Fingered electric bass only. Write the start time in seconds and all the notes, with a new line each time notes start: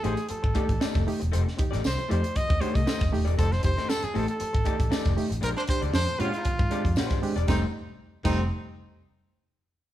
0.05 A1
0.31 muted fingered electric bass stroke
0.44 G#1
0.69 A1
0.95 F1
1.22 E1
1.34 F1
1.74 A1
1.86 C2
2.11 F2
2.50 D#2
2.75 C2
3.01 F1
3.13 D#1
3.27 E1
3.39 F1
3.64 F1
4.04 muted fingered electric bass stroke
4.16 A1
4.41 muted fingered electric bass stroke
4.54 G#1
4.80 A1
4.92 muted fingered electric bass stroke
5.06 F1
5.31 A1
5.43 A#1
5.83 D2
5.94 F2
6.20 A#2
6.59 G#2
6.85 F2
6.96 A#2
7.10 G#2
7.36 E1
7.48 F1
8.25 F1